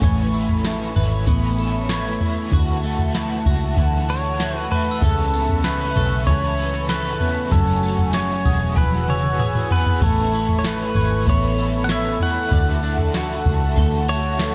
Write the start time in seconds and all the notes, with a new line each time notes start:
Already playing: A3 C#4 G#5 C#6
0.01 A1 A3 C#4 E4 B4 C#5 E5 B5, kick, floor tom, tambourine
0.32 E4 B4, tambourine
0.37 C#4
0.49 floor tom
0.64 A3 C#4 E4 A4 B4, snare, tambourine
0.94 G#1 C#4 E4 B4, floor tom, tambourine
1.12 C#5
1.26 A1 A3 B3 C#4 E4 B4, kick, floor tom, tambourine
1.58 E4 A4 B4, tambourine
1.62 C#4
1.88 A3 C#4 E4 C#5, snare, tambourine
1.93 B4
2.21 E4 B4, floor tom
2.25 C#4
2.52 D2 D3 E3 A3 E4 F#4 E5 F#5 A5, kick, floor tom, tambourine
2.82 E4 F#4, tambourine
2.87 A3
2.99 floor tom
3.14 E3 A3 E4, snare, tambourine
3.18 F#4
3.45 C#2 E4 F#4, kick, floor tom, tambourine
3.50 A3
3.76 D2 D3 E3 A3 E4 F#4, kick, floor tom, tambourine
4.07 D4 E4 F#4 C#5, tambourine
4.11 A3
4.25 E4
4.39 E3 A3 E4, snare, tambourine
4.43 F#4
4.59 B4
4.70 E4 F#4 B4 A5, floor tom
4.74 A3
4.91 E6
5.01 C#2 C#3 E3 B3 C#4 A4 B5 C#6, kick, floor tom, tambourine
5.11 F#6
5.33 C#4 A4, tambourine
5.37 B3
5.49 floor tom
5.64 E3 B3 C#4 B4, snare, tambourine
5.68 A4
5.81 C#4
5.95 B1 C#4 A4, floor tom, tambourine
5.99 B3
6.26 C#2 C#3 E3 B3 C#4 A4 C#5, kick, floor tom, tambourine
6.56 C#4 A4, tambourine
6.60 B3
6.74 C#4
6.89 E3 B3 C#4 A4 B4, snare, tambourine
7.19 C#4 A4, floor tom
7.23 B3
7.51 F#1 F#2 C#3 F#3 A3 C#4 A4 F#5 G#5 C#6, kick, floor tom, tambourine
7.83 F#3 A3 C#4, tambourine
7.98 floor tom
8.13 F#3 A3 C#4 C#5, snare, tambourine
8.18 G#4
8.45 E1 A3 C#4 G#4, kick, floor tom, tambourine
8.49 F#3
8.76 E1 E3 B3 F#4 G#4 B4 F#5 G#5 E6, kick, high tom
8.92 high tom
9.08 E4 F#4 G#4 C#5, mid tom
9.12 B3
9.23 mid tom
9.39 E3 B3 F#4 G#4, mid tom
9.44 G#4
9.55 mid tom
9.71 B3 F#4 G#4 B4, floor tom
9.75 B3
9.86 floor tom
10.02 A1 A3 C#4 E4 A4 C#5 E5 B5 C#6, kick, floor tom, crash, tambourine
10.06 B4
10.33 E4 B4, tambourine
10.38 C#4
10.49 floor tom
10.59 C#5
10.64 A3 C#4 E4 A4 B4, snare, tambourine
10.69 B4
10.95 G#1 E4 B4 C#5, floor tom, tambourine
11.00 C#4
11.26 A1 A3 B3 C#4 E4 B4 C#5, kick, floor tom, tambourine
11.58 E4 A4 B4, tambourine
11.62 C#4
11.84 F#5
11.88 A3 C#4 E4 C#5 E5, snare, tambourine
11.93 B4
12.20 E4 B4 F#5, floor tom
12.24 C#4
12.50 D2 D3 E3 A3 E4 F#4 D5 F#5 A5, kick, floor tom, tambourine
12.82 D4 E4 F#4, tambourine
12.86 A3
12.98 floor tom
13.14 E3 A3 E4, snare, tambourine
13.18 F#4
13.45 C#2 E4 F#4, kick, floor tom, tambourine
13.49 A3
13.76 D2 D3 E3 A3 E4 F#4, kick, floor tom, tambourine
14.08 E4 F#4 C#5, tambourine
14.12 A3
14.25 F#4
14.38 E3 A3 E4, snare, tambourine
14.42 F#4